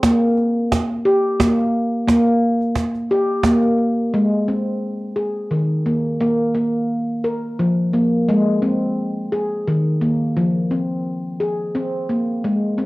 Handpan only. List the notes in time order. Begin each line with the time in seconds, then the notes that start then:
0.03 A#3
1.05 G4
1.40 A#3
2.08 A#3
3.11 G4
3.44 A#3
4.14 G#3
4.48 C4
5.16 G#4
5.51 D#3
5.86 A#3
6.20 A#3
6.54 A#3
7.24 A#4
7.59 F3
7.93 A#3
8.29 G#3
8.62 C4
9.32 G#4
9.68 D#3
10.01 A#3
10.37 F3
10.71 C4
11.40 G#4
11.75 C4
12.09 A#3
12.44 G#3
12.78 C4